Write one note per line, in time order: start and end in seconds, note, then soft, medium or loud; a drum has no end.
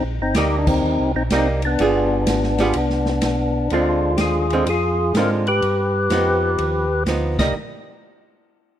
0.03 0.19 A#1 medium
0.19 0.34 G1 medium
0.19 0.36 C4 medium
0.19 0.35 D#4 medium
0.35 0.81 D2 medium
0.35 1.10 G3 medium
0.35 1.10 A#3 medium
0.35 0.57 D#4 medium
0.35 1.10 D#4 medium
0.35 0.59 G4 medium
0.35 snare medium
0.35 hi-hat pedal medium
0.35 ride medium
0.58 0.67 D4 medium
0.67 1.12 C4 medium
0.67 1.12 D#4 loud
0.67 kick medium
0.67 crash medium
0.83 0.99 D#2 medium
1.00 1.15 C2 medium
1.15 1.30 A#1 medium
1.15 1.23 C4 medium
1.15 1.23 D#4 medium
1.30 1.77 C2 loud
1.30 1.60 G3 medium
1.30 1.61 A#3 medium
1.30 1.61 D#4 medium
1.30 1.47 D#4 medium
1.30 snare medium
1.30 hi-hat pedal medium
1.30 ride medium
1.35 1.48 C4 medium
1.62 3.10 D4 medium
1.62 ride soft
1.67 3.08 B3 medium
1.79 2.26 G1 medium
1.79 2.53 G3 medium
1.79 2.53 B3 medium
1.79 2.54 F4 medium
1.79 2.54 G#4 medium
1.79 ride medium
2.27 2.73 G#1 loud
2.27 snare medium
2.27 hi-hat pedal medium
2.27 ride medium
2.43 snare soft
2.58 2.74 G3 medium
2.58 2.74 B3 medium
2.58 2.74 F4 medium
2.58 2.74 G#4 medium
2.58 snare soft
2.58 ride soft
2.73 3.22 C2 medium
2.73 ride medium
2.90 snare soft
3.06 3.68 B3 medium
3.06 snare soft
3.11 3.72 D4 medium
3.22 3.69 B1 medium
3.22 snare medium
3.22 hi-hat pedal soft
3.22 ride medium
3.70 4.17 D2 medium
3.70 4.45 D3 medium
3.70 4.45 G#3 soft
3.70 4.46 C4 medium
3.70 4.12 D4 medium
3.70 4.46 F4 medium
3.70 4.17 F4 medium
3.70 ride soft
4.17 4.65 D#2 medium
4.17 4.65 F4 medium
4.17 4.20 G4 medium
4.17 4.64 G#4 medium
4.17 snare medium
4.17 hi-hat pedal medium
4.17 ride medium
4.50 4.66 D3 medium
4.50 4.66 G#3 medium
4.50 4.66 C4 medium
4.50 4.67 F4 medium
4.50 ride soft
4.66 5.13 F2 medium
4.66 5.17 G#4 medium
4.66 ride medium
4.70 5.13 F4 medium
5.14 5.61 G#2 medium
5.14 5.45 D3 medium
5.14 5.45 G#3 medium
5.14 5.31 F4 medium
5.14 5.31 A#4 medium
5.14 snare medium
5.14 hi-hat pedal medium
5.14 ride medium
5.18 5.45 C4 medium
5.18 5.45 F4 medium
5.47 7.04 G4 medium
5.47 7.03 B4 loud
5.47 ride soft
5.62 6.09 G2 medium
5.62 ride soft
6.10 6.57 F2 medium
6.10 6.85 F3 medium
6.10 6.85 B3 medium
6.10 6.86 D#4 medium
6.10 snare medium
6.10 hi-hat pedal medium
6.10 ride medium
6.58 7.06 D#2 medium
6.58 ride medium
7.06 7.38 D2 medium
7.06 7.36 F3 medium
7.06 7.37 B3 medium
7.06 7.37 D#4 medium
7.06 snare medium
7.06 hi-hat pedal medium
7.06 ride medium
7.38 7.54 C2 medium
7.38 7.54 G3 medium
7.38 7.54 A#3 medium
7.38 7.54 D#4 medium
7.38 7.54 D#5 medium
7.38 kick medium
7.38 snare medium
7.38 crash medium